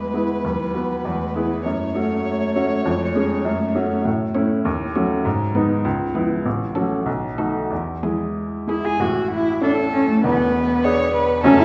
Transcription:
0.00 0.47 E2 soft
0.00 0.14 G#3 soft
0.00 0.40 G#3 soft
0.00 0.14 B3 soft
0.00 0.10 E4 soft
0.00 1.60 B4 soft
0.14 0.41 G#3 soft
0.14 0.41 B3 soft
0.14 0.42 E4 soft
0.44 0.74 D#2 soft
0.44 1.01 F#3 soft
0.74 1.02 B3 soft
0.74 1.02 F#4 soft
1.05 1.34 E2 medium
1.05 1.61 G#3 soft
1.35 1.62 B3 soft
1.35 1.62 E4 soft
1.35 1.62 G#4 soft
1.65 1.94 F#2 soft
1.65 2.82 A3 soft
1.65 4.02 C#5 medium
1.95 2.51 A3 soft
1.95 2.52 C#4 soft
1.95 2.52 F#4 soft
2.55 2.83 A3 soft
2.55 2.83 C#4 soft
2.55 2.83 F#4 soft
2.85 3.15 F2 medium
2.85 3.42 G#3 soft
3.15 3.43 G#3 soft
3.15 3.43 C#4 soft
3.15 3.43 G#4 soft
3.45 3.74 F#2 medium
3.45 4.02 A3 medium
3.75 4.02 A3 soft
3.75 4.02 C#4 soft
3.75 4.03 F#4 soft
4.05 4.34 A2 medium
4.35 4.62 A3 soft
4.35 4.58 A3 medium
4.35 4.62 C#4 soft
4.35 4.62 E4 soft
4.35 4.57 C#5 medium
4.65 4.94 D#2 medium
4.95 5.18 F#3 medium
4.95 5.22 A3 soft
4.95 5.22 C#4 soft
4.95 5.23 F#4 soft
4.95 5.17 C#5 medium
5.25 5.54 G#2 medium
5.55 5.78 D#3 medium
5.55 5.82 G#3 soft
5.55 5.82 B3 soft
5.55 5.82 D#4 soft
5.55 5.77 B4 medium
5.85 6.14 C#2 medium
6.14 6.38 E3 medium
6.14 6.42 G#3 soft
6.14 6.42 B3 soft
6.14 6.43 E4 soft
6.14 6.38 B4 medium
6.46 6.75 A1 medium
6.75 6.99 F#3 medium
6.75 7.03 A3 soft
6.75 7.03 C#4 soft
6.75 7.04 F#4 soft
6.75 6.98 A4 medium
7.06 7.37 B1 medium
7.37 7.62 D#3 soft
7.37 7.67 A3 soft
7.37 7.67 D#4 soft
7.37 7.67 F#4 soft
7.37 7.62 A4 medium
7.70 8.02 E2 soft
8.03 8.28 E3 soft
8.03 8.64 G#3 soft
8.03 8.64 E4 soft
8.03 8.28 G#4 soft
8.03 8.65 G#4 soft
8.67 8.97 G#3 soft
8.67 8.86 E4 medium
8.67 8.97 E4 soft
8.67 8.97 G#4 soft
8.67 8.93 G#4 soft
8.85 9.02 G#4 medium
9.00 10.20 A1 soft
9.00 10.20 A2 soft
9.00 9.31 F#4 medium
9.32 9.62 E4 medium
9.61 10.19 C#4 soft
9.61 9.71 D4 medium
9.61 10.19 E4 soft
9.61 10.20 A4 soft
9.61 10.20 A4 medium
9.93 10.08 C#4 medium
10.09 10.23 A3 medium
10.24 11.40 E1 medium
10.24 11.40 E2 medium
10.24 10.83 B3 medium
10.24 10.86 B4 medium
10.84 11.40 B3 medium
10.84 11.40 D4 medium
10.84 11.40 G#4 medium
10.84 11.13 C#5 medium
11.14 11.43 B4 medium
11.44 11.65 F#1 medium
11.44 11.65 F#2 medium
11.44 11.65 A3 medium
11.44 11.58 C#4 medium
11.44 11.65 C#4 medium
11.44 11.65 F#4 medium
11.44 11.65 A4 medium
11.60 11.65 E4 medium

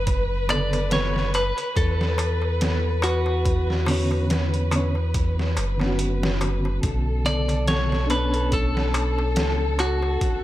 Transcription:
0.00 1.53 F#1 medium
0.00 6.85 B4 medium
0.07 kick loud
0.07 closed hi-hat medium
0.07 darbuka tek soft
0.47 1.30 C#3 medium
0.47 1.28 D3 medium
0.47 1.29 B3 medium
0.47 0.89 D5 loud
0.47 closed hi-hat medium
0.47 darbuka tek loud
0.52 1.31 A4 medium
0.73 closed hi-hat soft
0.73 darbuka tek medium
0.91 1.34 C#5 loud
0.91 snare loud
0.91 closed hi-hat medium
0.91 darbuka tek soft
1.16 snare soft
1.34 1.74 B4 loud
1.34 closed hi-hat medium
1.34 darbuka tek medium
1.57 closed hi-hat soft
1.57 darbuka tek soft
1.76 5.59 E2 medium
1.76 3.03 A4 loud
1.76 kick loud
1.76 closed hi-hat medium
1.76 darbuka tek soft
2.01 snare medium
2.18 closed hi-hat medium
2.18 darbuka tek loud
2.42 darbuka tek medium
2.61 snare loud
2.61 closed hi-hat medium
2.61 darbuka tek soft
3.02 4.26 F#4 medium
3.02 closed hi-hat medium
3.02 darbuka tek loud
3.26 darbuka tek medium
3.45 kick loud
3.45 closed hi-hat medium
3.45 darbuka tek soft
3.70 snare soft
3.86 4.67 D3 medium
3.86 4.68 B3 medium
3.86 4.68 C#4 medium
3.86 open hi-hat medium
3.86 darbuka tek loud
3.91 4.69 C#5 medium
4.11 darbuka tek medium
4.30 snare loud
4.30 closed hi-hat medium
4.30 darbuka tek soft
4.54 closed hi-hat soft
4.71 4.91 D3 medium
4.71 4.92 B3 medium
4.71 4.93 C#4 medium
4.71 closed hi-hat medium
4.71 darbuka tek loud
4.76 4.94 C#5 loud
4.95 darbuka tek soft
5.14 kick loud
5.14 closed hi-hat medium
5.14 darbuka tek soft
5.39 snare soft
5.57 6.80 F#1 loud
5.57 closed hi-hat medium
5.57 darbuka tek medium
5.77 7.19 D3 medium
5.77 7.21 B3 medium
5.77 darbuka tek medium
5.81 7.23 C#4 medium
5.81 snare soft
5.87 7.24 F#4 loud
5.99 closed hi-hat medium
5.99 darbuka tek soft
6.23 snare loud
6.41 closed hi-hat medium
6.41 darbuka tek medium
6.65 darbuka tek medium
6.83 9.39 B1 loud
6.83 10.44 A4 medium
6.83 kick loud
6.83 closed hi-hat medium
6.83 darbuka tek soft
7.24 8.06 C#3 medium
7.24 8.05 D3 medium
7.24 8.05 B3 medium
7.24 7.68 D5 loud
7.24 closed hi-hat medium
7.24 darbuka tek medium
7.29 8.07 A4 medium
7.48 closed hi-hat soft
7.48 darbuka tek medium
7.68 8.07 C#5 loud
7.68 snare loud
7.68 closed hi-hat medium
7.68 darbuka tek soft
7.92 snare soft
8.07 10.44 B3 medium
8.07 10.44 D4 medium
8.07 8.54 B4 medium
8.07 closed hi-hat medium
8.07 darbuka tek medium
8.12 10.44 C#4 medium
8.12 10.44 C#5 medium
8.34 closed hi-hat soft
8.34 darbuka tek medium
8.52 9.80 A4 loud
8.52 kick loud
8.52 closed hi-hat medium
8.52 darbuka tek soft
8.77 snare medium
8.94 closed hi-hat medium
8.94 darbuka tek loud
9.19 darbuka tek medium
9.36 10.18 C#2 medium
9.36 snare loud
9.36 closed hi-hat medium
9.36 darbuka tek soft
9.79 10.44 F#4 medium
9.79 closed hi-hat medium
9.79 darbuka tek medium
10.02 darbuka tek medium
10.21 kick loud
10.21 closed hi-hat medium
10.21 darbuka tek soft

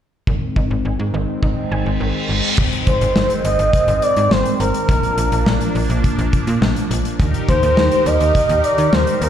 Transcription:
0.27 0.39 G#1 loud
0.27 2.56 D#3 medium
0.27 0.50 D#3 medium
0.27 2.56 G#3 medium
0.27 2.56 C4 medium
0.27 kick loud
0.56 0.68 G#1 medium
0.56 0.79 D#4 medium
0.56 kick medium
0.71 0.82 G#1 medium
0.85 0.96 G#1 medium
0.85 1.08 G#5 medium
0.99 1.11 G#2 medium
1.14 1.25 G#1 loud
1.14 1.37 D#3 medium
1.43 1.54 G#1 medium
1.43 1.65 D#4 medium
1.43 kick medium
1.43 reverse cymbal medium
1.72 1.83 G#1 loud
1.72 1.94 G#5 medium
1.86 1.97 G#1 medium
2.00 2.12 G#1 medium
2.00 2.23 D#3 medium
2.29 2.41 G#1 loud
2.58 2.69 G#1 loud
2.58 4.87 D#3 medium
2.58 4.86 G#3 medium
2.58 4.87 C4 medium
2.58 kick loud
2.58 crash medium
2.58 impact medium
2.73 closed hi-hat soft
2.87 2.98 G#1 loud
2.87 3.41 C5 loud
2.87 kick medium
2.87 closed hi-hat medium
3.01 3.13 G#1 loud
3.01 closed hi-hat medium
3.16 3.27 G#1 loud
3.16 snare loud
3.30 closed hi-hat soft
3.45 3.56 G#1 loud
3.45 4.04 D#5 loud
3.45 closed hi-hat medium
3.59 3.70 G#1 medium
3.59 closed hi-hat medium
3.73 kick medium
3.73 closed hi-hat medium
3.88 3.99 G#1 loud
3.88 closed hi-hat soft
4.02 4.33 D5 loud
4.02 closed hi-hat medium
4.16 4.28 G#2 medium
4.16 closed hi-hat soft
4.31 4.42 G#1 loud
4.31 4.60 C5 loud
4.31 snare loud
4.46 closed hi-hat medium
4.60 4.71 G#1 loud
4.60 6.29 A#4 loud
4.60 closed hi-hat medium
4.74 closed hi-hat medium
4.89 5.00 A#1 loud
4.89 7.17 F3 medium
4.89 7.17 A#3 medium
4.89 7.17 D4 medium
4.89 kick loud
4.89 closed hi-hat medium
5.03 closed hi-hat soft
5.18 5.29 A#1 medium
5.18 closed hi-hat medium
5.32 5.43 A#1 medium
5.32 closed hi-hat medium
5.46 5.58 A#1 loud
5.46 snare loud
5.61 closed hi-hat soft
5.75 5.87 A#1 loud
5.75 open hi-hat soft
5.90 6.01 A#1 loud
5.90 closed hi-hat medium
6.04 kick medium
6.04 closed hi-hat medium
6.18 6.30 A#1 loud
6.18 closed hi-hat soft
6.33 kick medium
6.33 closed hi-hat medium
6.47 6.59 A#2 loud
6.47 closed hi-hat medium
6.62 6.73 A#1 loud
6.62 snare loud
6.76 closed hi-hat soft
6.91 7.02 A#1 loud
6.91 closed hi-hat medium
7.05 closed hi-hat medium
7.20 7.31 D#2 loud
7.20 9.29 D#3 medium
7.20 9.29 D#4 medium
7.20 9.29 G4 medium
7.20 9.29 A#4 medium
7.20 kick loud
7.20 closed hi-hat medium
7.34 closed hi-hat soft
7.48 7.60 D#2 loud
7.48 8.08 C5 loud
7.48 kick medium
7.48 closed hi-hat medium
7.63 7.74 D#2 loud
7.63 closed hi-hat medium
7.77 7.89 D#2 loud
7.77 snare loud
7.91 closed hi-hat soft
8.06 8.18 D#2 loud
8.06 8.65 D#5 loud
8.06 closed hi-hat medium
8.20 8.32 D#2 medium
8.20 closed hi-hat medium
8.35 kick medium
8.35 closed hi-hat medium
8.49 8.61 D#2 loud
8.49 closed hi-hat soft
8.64 8.94 D5 loud
8.64 closed hi-hat medium
8.78 8.90 D#3 medium
8.78 closed hi-hat medium
8.93 9.04 D#2 loud
8.93 9.23 C5 loud
8.93 snare loud
9.07 closed hi-hat medium
9.21 9.29 D#2 loud
9.21 9.29 A#4 loud
9.21 closed hi-hat medium

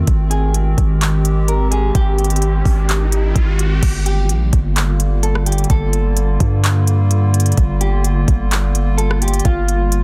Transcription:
0.00 3.78 D#3 medium
0.00 3.78 C4 medium
0.07 0.75 G#1 loud
0.07 3.79 G#3 medium
0.07 3.79 G4 medium
0.07 kick loud
0.07 closed hi-hat medium
0.07 riser medium
0.31 0.53 G#4 medium
0.31 closed hi-hat medium
0.54 closed hi-hat medium
0.78 1.91 G#1 loud
0.78 kick medium
0.78 closed hi-hat medium
1.01 clap loud
1.01 closed hi-hat medium
1.25 closed hi-hat medium
1.48 1.71 A#4 medium
1.48 closed hi-hat medium
1.71 1.94 G#4 medium
1.71 closed hi-hat medium
1.95 2.62 G#1 loud
1.95 3.79 G4 loud
1.95 kick loud
1.95 closed hi-hat medium
2.18 closed hi-hat soft
2.24 closed hi-hat soft
2.30 closed hi-hat medium
2.36 closed hi-hat medium
2.42 closed hi-hat medium
2.65 3.33 G#1 loud
2.65 kick medium
2.65 open hi-hat soft
2.89 clap loud
2.89 closed hi-hat medium
3.12 closed hi-hat medium
3.35 3.81 G#1 loud
3.35 kick medium
3.35 closed hi-hat medium
3.59 closed hi-hat medium
3.82 4.31 G1 loud
3.82 10.04 D3 medium
3.82 10.04 G3 medium
3.82 10.04 A#3 medium
3.82 10.04 F4 medium
3.82 kick loud
3.82 closed hi-hat medium
3.82 crash loud
4.06 4.28 G4 medium
4.06 closed hi-hat medium
4.29 4.52 A#1 loud
4.29 closed hi-hat medium
4.53 5.66 G1 loud
4.53 kick loud
4.53 closed hi-hat medium
4.76 clap loud
4.76 closed hi-hat medium
5.00 closed hi-hat medium
5.23 5.45 A4 medium
5.23 closed hi-hat medium
5.35 cross-stick medium
5.46 5.69 G4 medium
5.46 closed hi-hat medium
5.52 closed hi-hat medium
5.58 closed hi-hat medium
5.64 closed hi-hat soft
5.70 6.38 G1 loud
5.70 7.54 A4 medium
5.70 kick loud
5.70 closed hi-hat medium
5.93 closed hi-hat medium
6.17 closed hi-hat medium
6.40 7.53 G2 loud
6.40 kick medium
6.40 closed hi-hat medium
6.64 clap loud
6.64 closed hi-hat medium
6.87 closed hi-hat medium
7.11 closed hi-hat medium
7.34 closed hi-hat medium
7.40 closed hi-hat medium
7.46 closed hi-hat medium
7.52 closed hi-hat soft
7.57 8.25 G1 loud
7.57 kick loud
7.57 closed hi-hat medium
7.81 8.03 G4 medium
7.81 closed hi-hat medium
8.04 closed hi-hat medium
8.28 9.41 G1 loud
8.28 kick medium
8.28 closed hi-hat medium
8.51 clap loud
8.51 closed hi-hat medium
8.75 closed hi-hat medium
8.98 9.20 A4 medium
8.98 closed hi-hat medium
9.11 cross-stick medium
9.22 9.44 G4 medium
9.22 closed hi-hat medium
9.28 closed hi-hat medium
9.34 closed hi-hat medium
9.39 closed hi-hat soft
9.45 10.04 G1 loud
9.45 10.04 F4 loud
9.45 kick loud
9.45 closed hi-hat medium
9.68 closed hi-hat medium
9.92 closed hi-hat medium

